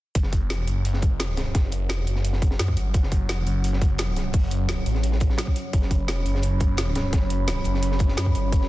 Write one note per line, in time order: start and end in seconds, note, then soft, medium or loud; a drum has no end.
0.15 0.66 F#1 loud
0.15 8.69 F#3 medium
0.15 8.69 C#4 medium
0.15 8.69 C#5 medium
0.15 5.71 F#5 medium
0.15 kick loud
0.15 closed hi-hat medium
0.23 snare soft
0.33 kick medium
0.33 closed hi-hat medium
0.50 snare loud
0.50 closed hi-hat medium
0.67 1.53 F#1 medium
0.67 closed hi-hat medium
0.85 closed hi-hat medium
0.94 snare soft
1.02 kick loud
1.02 closed hi-hat medium
1.20 snare loud
1.20 closed hi-hat medium
1.37 snare loud
1.37 closed hi-hat medium
1.55 2.06 F#1 medium
1.55 kick loud
1.55 snare loud
1.55 closed hi-hat medium
1.72 closed hi-hat medium
1.89 snare loud
1.89 closed hi-hat medium
2.07 2.58 F#1 medium
2.07 closed hi-hat medium
2.16 snare soft
2.25 closed hi-hat medium
2.33 snare soft
2.42 kick loud
2.42 closed hi-hat medium
2.51 snare soft
2.59 2.75 F#2 loud
2.59 snare loud
2.59 closed hi-hat medium
2.68 kick medium
2.77 2.93 G1 loud
2.77 closed hi-hat medium
2.94 3.45 F#1 loud
2.94 kick loud
2.94 closed hi-hat medium
3.03 snare soft
3.12 kick medium
3.12 closed hi-hat medium
3.29 snare loud
3.29 closed hi-hat medium
3.46 4.32 F#1 loud
3.46 closed hi-hat medium
3.64 closed hi-hat medium
3.73 snare soft
3.81 kick loud
3.81 closed hi-hat medium
3.98 snare loud
3.98 closed hi-hat medium
4.16 snare soft
4.16 closed hi-hat medium
4.33 4.85 F#1 loud
4.33 kick loud
4.33 closed hi-hat medium
4.33 open hi-hat medium
4.51 closed hi-hat medium
4.69 snare loud
4.69 closed hi-hat medium
4.86 5.37 A1 medium
4.86 closed hi-hat medium
4.95 snare soft
5.03 closed hi-hat medium
5.12 snare soft
5.20 kick loud
5.20 closed hi-hat medium
5.30 snare soft
5.38 snare loud
5.38 closed hi-hat medium
5.47 kick medium
5.56 closed hi-hat medium
5.73 6.24 F#1 loud
5.73 8.69 B5 medium
5.73 kick loud
5.73 closed hi-hat medium
5.82 snare soft
5.91 kick medium
5.91 closed hi-hat medium
6.08 snare loud
6.08 closed hi-hat medium
6.26 7.11 F#1 medium
6.26 closed hi-hat medium
6.35 snare soft
6.42 closed hi-hat medium
6.60 kick loud
6.60 closed hi-hat medium
6.77 snare loud
6.77 closed hi-hat medium
6.95 snare loud
6.95 closed hi-hat medium
7.13 7.64 F#1 loud
7.13 kick loud
7.13 snare loud
7.13 closed hi-hat medium
7.30 closed hi-hat medium
7.48 snare loud
7.48 closed hi-hat medium
7.64 8.16 F#1 loud
7.64 closed hi-hat medium
7.74 snare soft
7.83 closed hi-hat medium
7.92 snare soft
7.99 kick loud
7.99 closed hi-hat medium
8.08 snare soft
8.17 8.34 F#2 loud
8.17 snare loud
8.17 closed hi-hat medium
8.26 kick medium
8.35 8.51 G1 loud
8.35 closed hi-hat medium
8.52 8.69 F#1 loud
8.52 kick loud
8.52 closed hi-hat medium
8.61 snare soft